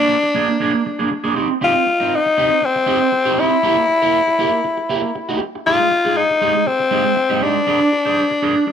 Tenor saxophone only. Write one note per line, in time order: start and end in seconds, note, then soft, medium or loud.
0.00 1.33 D4 loud
1.64 2.17 F4 loud
2.16 2.67 D#4 loud
2.65 3.42 C4 loud
3.40 5.41 E4 loud
5.67 6.19 F4 loud
6.17 6.69 D#4 loud
6.67 7.45 C4 loud
7.43 8.72 D4 loud